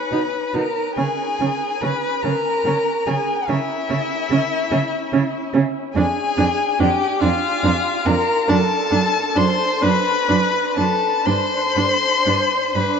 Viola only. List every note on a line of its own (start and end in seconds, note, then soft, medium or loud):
0.12 0.20 D#4 soft
0.54 0.62 D#4 soft
0.98 1.06 C#4 soft
1.41 1.49 C#4 soft
1.83 1.91 C#4 soft
2.25 2.33 C#4 soft
2.66 2.74 C#4 soft
3.07 3.15 C#4 soft
3.49 3.57 C#4 medium
3.90 3.98 C#4 soft
4.32 4.40 C#4 soft
4.72 4.80 C#4 medium
5.13 5.21 C#4 medium
5.54 5.62 C#4 medium
5.96 6.04 D4 medium
6.37 6.45 D4 medium
6.79 6.87 D4 medium
7.21 7.29 D4 medium
7.63 7.71 D4 medium
8.05 8.13 D4 medium
8.48 8.56 D4 medium
8.91 8.99 D4 medium
9.35 9.43 D4 medium
9.82 9.90 D4 medium
10.28 10.36 D4 medium
10.76 10.84 D4 soft
11.27 11.35 D4 medium
11.77 11.85 D4 soft
12.26 12.34 D4 soft
12.76 13.00 D4 soft